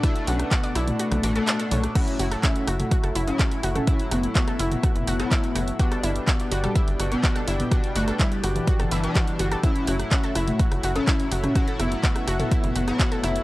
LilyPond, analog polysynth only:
\new Staff \with { instrumentName = "Analog polysynth" } { \clef bass \time 4/4 \key fis \phrygian \tempo 4 = 125 <b, a d'>2~ <b, a d'>8 <b, a d'>16 <b, a d'>4~ <b, a d'>16 | <a, fis e'>2~ <a, fis e'>8. <a, fis e'>4~ <a, fis e'>16 | <a, fis e'>2~ <a, fis e'>8. <a, fis e'>4~ <a, fis e'>16 | <b, g d'>2~ <b, g d'>8. <b, g d'>4~ <b, g d'>16 |
<b, g d'>2~ <b, g d'>8 <b, g d'>16 <b, g d'>4~ <b, g d'>16 | <a, fis e'>2~ <a, fis e'>8. <a, fis e'>4~ <a, fis e'>16 | <a, fis e'>2~ <a, fis e'>8. <a, fis e'>4~ <a, fis e'>16 | }